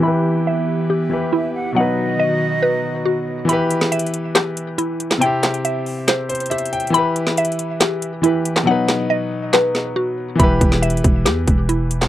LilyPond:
<<
  \new Staff \with { instrumentName = "Flute" } { \time 4/4 \key e \minor \tempo 4 = 139 r2. e''8 fis''8 | dis''1 | r1 | r1 |
r1 | r1 | r1 | }
  \new Staff \with { instrumentName = "Synth pluck" } { \time 4/4 \key e \minor b''4 e''4 g'4 e'4 | fis''4 dis''4 b'4 fis'4 | b''4 e''4 g'4 e'4 | g''4 e''4 c''4 g'4 |
b''4 e''4 g'4 e'4 | fis''4 dis''4 b'4 fis'4 | b''4 e''4 g'4 e'4 | }
  \new Staff \with { instrumentName = "Grand piano" } { \time 4/4 \key e \minor << { r1 | r1 | r1 | r2 r8 c''8 e''8 g''8 |
r1 | r1 | r1 | } \\ { <e e' g' b'>2~ <e e' g' b'>8 <e e' g' b'>4. | <b, fis dis' b'>1 | <e e' g' b'>1 | <c c' e' g'>1 |
<e e' g' b'>2. <e e' g' b'>4 | <b, fis dis' b'>1 | <e e' g' b'>1 | } >> }
  \new Staff \with { instrumentName = "Analog synth pad" } { \time 4/4 \key e \minor << { <e g'>1 | <dis fis'>1 | r1 | r1 |
r1 | r1 | r1 | } \\ { b1~ | b1 | r1 | r1 |
r1 | r1 | r1 | } >> }
  \new Staff \with { instrumentName = "808-style bass" } { \clef bass \time 4/4 \key e \minor r1 | r1 | r1 | r1 |
r1 | r1 | e,,8 e,,4 e,,8 e,8 e,,4. | }
  \new DrumStaff \with { instrumentName = "Drums" } \drummode { \time 4/4 r4 r4 r4 r4 | r4 r4 r4 r4 | hh8 hh16 sn16 \tuplet 3/2 { hh16 hh16 hh16 hh16 r16 r16 } <hc hh sn>8 hh8 hh8 hh16 <hc sn>16 | hh8 <hc hh sn>16 hh16 hh8 hho8 <hc hh sn>8 hh32 hh32 hh32 hh32 \tuplet 3/2 { hh16 hh16 hh16 hh16 hh16 hh16 } |
hh8 hh16 sn16 \tuplet 3/2 { hh16 hh16 hh16 hh16 r16 r16 } <hc hh sn>8 hh8 hh8 hh16 <hc sn>16 | r8 <hc sn>8 r4 <hc sn>8 sn8 r4 | <hh bd>8 <hh bd>16 sn16 \tuplet 3/2 { hh16 hh16 hh16 <hh bd>16 r16 r16 } <hc hh sn>8 <hh bd>8 hh8 hh16 <hc sn>16 | }
>>